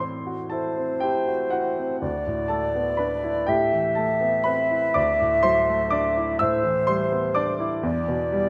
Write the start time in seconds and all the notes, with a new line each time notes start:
Already playing: A2 E3 C4 E4 D5 D6
0.00 C4 C5 C6
0.26 F#4
0.50 E4 A4 C5 A5
0.77 C4
1.00 E4 G4 G5
1.28 F#4
1.50 E4 F#4 F#5
1.77 C4
2.01 D2 D5
2.27 A2
2.48 A3 A4 A5
2.75 B3
2.97 D4 B4 B5
3.24 E4
3.47 A2 G4 E5 G5
3.73 E3
3.95 A3 A4 A5
4.21 B3
4.44 C4 B4 B5
4.71 E4
4.94 D2 D5 D6
5.21 A2
5.43 F#3 C5 C6
5.68 A3
5.90 D4 D5 D6
6.17 E4
6.39 A2 C5 E5 E6
6.64 E3
6.87 G3 C5 C6
7.12 B3
7.35 D4 D5 D6
7.60 E4
7.83 E2 D5
8.08 B2
8.33 G3